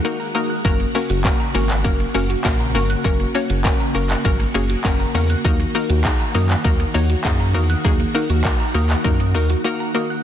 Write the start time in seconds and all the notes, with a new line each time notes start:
Already playing: D#3 G#3 F#4
0.05 A#3 D#4 F#4 A#4 F#5
0.20 A#5
0.35 A#3 D#4 F#4 A#4 D#6
0.50 F#6
0.65 F#1 F#3 A#3 C#4 F#4 A#4, kick, shaker
0.80 A#3, closed hi-hat, shaker
0.95 A#3 C#4 F#4 A#4, open hi-hat, shaker
1.10 F#1 F#4, closed hi-hat, shaker
1.25 A#3 C#4 F#4 A#4 F#5, kick, clap, shaker
1.40 A#5, closed hi-hat, shaker
1.54 G#1 A#3 C#4 F#4 A#4 C#6, open hi-hat, shaker
1.70 F#6, clap, closed hi-hat, shaker
1.84 F#1 F#3 A#3 C#4 F#4 A#4, kick, shaker
2.00 A#3, closed hi-hat, shaker
2.14 F#1 A#3 C#4 F#4 A#4, open hi-hat, shaker
2.30 F#4, closed hi-hat, shaker
2.45 A#1 A#3 C#4 F#4 A#4 F#5, kick, clap, shaker
2.60 A#5, closed hi-hat, shaker
2.75 G1 A#3 C#4 F#4 A#4 C#6, open hi-hat, shaker
2.90 F#6, closed hi-hat, shaker
3.04 F#1 F#3 A#3 C#4 F#4 A#4, kick, shaker
3.20 A#3, closed hi-hat, shaker
3.35 A#3 C#4 F#4 C#5, open hi-hat, shaker
3.50 F#1 F#4, closed hi-hat, shaker
3.64 A#3 C#4 F#4 A#4 F#5, kick, clap, shaker
3.80 A#5, closed hi-hat, shaker
3.95 F#1 A#3 C#4 F#4 A#4 C#6, open hi-hat, shaker
4.10 F#6, clap, closed hi-hat, shaker
4.25 G#1 F#3 A#3 C#4 F#4 A#4, kick, shaker
4.40 A#3, closed hi-hat, shaker
4.54 F#1 A#3 C#4 F#4 G#4, open hi-hat, shaker
4.70 F#4, closed hi-hat, shaker
4.85 F#1 A#3 C#4 F#4 A#4 F#5, kick, clap, shaker
5.00 A#5, closed hi-hat, shaker
5.14 E2 A#3 C#4 F#4 A#4 C#6, open hi-hat, shaker
5.30 F#6, closed hi-hat, shaker
5.45 D#2 F#3 A#3 D#4 F#4 A#4, kick, shaker
5.60 A#3, closed hi-hat, shaker
5.75 A#3 D#4 F#4 A#4, open hi-hat, shaker
5.90 D#2 F#4, closed hi-hat, shaker
6.05 A#3 D#4 F#4 G#4 F#5, kick, clap, shaker
6.20 A#5, closed hi-hat, shaker
6.35 F#2 A#3 D#4 F#4 A#4 D#6, open hi-hat, shaker
6.50 F#6, clap, closed hi-hat, shaker
6.64 D#2 F#3 A#3 D#4 F#4 A#4, kick, shaker
6.80 A#3, closed hi-hat, shaker
6.94 D#2 A#3 D#4 F#4 C#5, open hi-hat, shaker
7.10 F#4, closed hi-hat, shaker
7.25 F#2 A#3 D#4 F#4 G#4 F#5, kick, clap, shaker
7.40 A#5, closed hi-hat, shaker
7.54 E2 A#3 D#4 F#4 A#4 D#6, open hi-hat, shaker
7.70 F#6, closed hi-hat, shaker
7.85 D#2 F#3 A#3 D#4 F#4 G#4, kick, shaker
8.00 A#3, closed hi-hat, shaker
8.15 A#3 D#4 F#4 A#4, open hi-hat, shaker
8.30 D#2 F#4, closed hi-hat, shaker
8.44 A#3 D#4 F#4 A#4 F#5, kick, clap, shaker
8.60 A#5, closed hi-hat, shaker
8.74 D#2 A#3 D#4 F#4 A#4 D#6, open hi-hat, shaker
8.90 F#6, clap, closed hi-hat, shaker
9.04 F#2 F#3 A#3 D#4 F#4 A#4, kick, shaker
9.20 A#3, closed hi-hat, shaker
9.34 D#2 A#3 D#4 F#4 A#4, open hi-hat, shaker
9.50 F#4, closed hi-hat, shaker
9.64 A#3 D#4 F#4 A#4 F#5
9.80 A#5
9.94 A#3 D#4 F#4 A#4 D#6
10.10 F#6